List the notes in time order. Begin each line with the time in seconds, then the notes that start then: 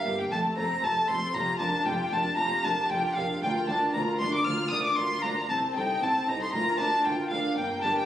Already playing: F5
0.05 G1 G2 A#3 G4 A#4
0.18 G5
0.30 F1 F2 A3 A4 A5
0.57 F1 F2 A3 C4 A4 C5 A#5
0.82 F1 F2 A3 A4 A5
1.08 F1 F2 A3 C4 A4 C5 C6
1.34 F1 F2 F4 G4 A#5
1.60 F1 F2 D4 F4 G4 A#4 A5
1.86 F1 F2 F4 G4 G5
2.12 F1 F2 D4 F4 G4 A#4 A5
2.38 F1 F2 F4 G4 A#5
2.64 F1 F2 D4 F4 G4 A#4 A5
2.90 F1 F2 F4 G4 G5
3.15 F1 F2 D4 F4 G4 A#4 F5
3.41 D2 F4 A#4 G5
3.67 D2 D4 F4 A#4 D5 A5
3.94 D2 F4 A#4 A#5
4.19 D2 D4 F4 A#4 D5 C6
4.33 D6
4.45 D2 F4 A#4 F6
4.71 D2 D4 F4 A#4 D5 D#6
4.84 D6
4.96 D2 F4 A#4 C6
5.23 D2 D4 F4 A#4 D5 A#5
5.49 C2 C4 C5 A5
5.75 C2 D#4 A4 C5 G5
6.01 C2 C4 C5 A5
6.27 C2 D#4 A4 C5 A#5
6.41 C6
6.53 D2 F4 A#4 A#5
6.78 D2 D4 F4 A#4 D5 A5
7.05 D2 F4 A#4 G5
7.30 D2 D4 F4 A#4 D5 F5
7.57 G1 G2 A#3 A#4 G5
7.82 G1 G2 D4 G4 A#4 A5
7.96 G5